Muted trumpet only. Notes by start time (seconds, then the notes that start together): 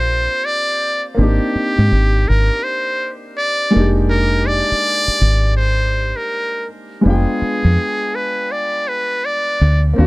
Already playing: C5
0.45 D5
1.18 G4
2.28 A#4
2.63 C5
3.37 D5
4.10 A#4
4.47 D5
5.57 C5
6.16 A#4
7.05 G#4
8.15 B4
8.52 D5
8.88 B4
9.25 D5
9.98 G4